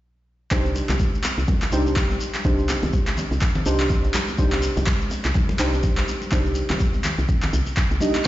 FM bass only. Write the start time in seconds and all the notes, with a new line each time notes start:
0.51 C2
0.89 C2
1.38 C2
1.72 C2
2.10 A#1
2.45 C2
2.83 C2
3.31 C2
3.66 C2
4.04 A#1
4.39 C2
4.77 C2
5.25 C2
5.59 C2
5.98 A#1
6.32 C2
6.70 C2
7.18 C2
7.53 C2
7.91 C2